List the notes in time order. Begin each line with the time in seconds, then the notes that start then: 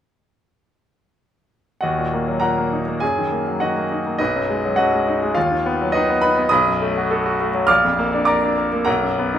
1.81 D#2 F#4 D#5 F#5
1.98 A#2
2.13 A#3
2.28 F#3
2.40 A#2 A#4 F#5 A#5
2.58 A#3
2.73 D#4
2.88 A#3
3.00 F#2 G#4 G#5
3.18 D#3
3.32 A#3
3.48 F#3
3.60 D#3 F#4 D#5 F#5
3.77 A#3
3.91 D#4
4.07 A#3
4.18 B1 D#4 B4 D#5
4.36 F#2
4.50 G#3
4.64 F#3
4.76 F#2 F#4 D#5 F#5
4.93 G#3
5.08 D#4
5.23 G#3
5.35 D#2 F4 F5
5.52 D#3
5.66 B3
5.82 F#3
5.92 D#3 D#4 B4 D#5
6.09 B3
6.21 D#4 B4 B5
6.38 B3
6.49 B1 D#5 B5 D#6
6.66 F#2
6.82 A3
6.97 F#4
7.11 A4
7.26 F#4
7.41 A3
7.54 F#3
7.67 A#1 F5 D6 F6
7.85 F2
7.99 A#3
8.13 D4
8.25 A#4 D5 A#5 D6
8.43 D4
8.58 A#4
8.73 A#3
8.85 B1 A#4 F#5 A#5
9.03 F#2
9.19 B3
9.34 D#4